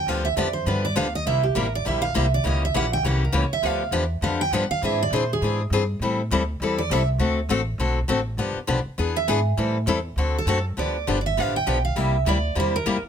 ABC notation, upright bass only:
X:1
M:4/4
L:1/8
Q:"Swing" 1/4=202
K:Gmix
V:1 name="Upright bass" clef=bass
D,,2 F,,2 G,,2 D,,2 | C,,2 A,,,2 _B,,,2 C,,2 | ^C,,2 ^A,,,2 =C,,2 ^C,, z | D,,2 E,,2 F,,2 G,, z |
^G,,2 _B,,2 G,,2 =G,,2 | A,,2 D,,2 E,,2 C,,2 | D,,2 A,,,2 B,,,2 A,,,2 | G,,, z B,,, z E,,2 ^G,,2 |
A,,2 E,,2 D,,2 ^F,,2 | D,,2 G,,,2 A,,,2 B,,,2 | C,,2 D,,2 E,,2 F,, z |]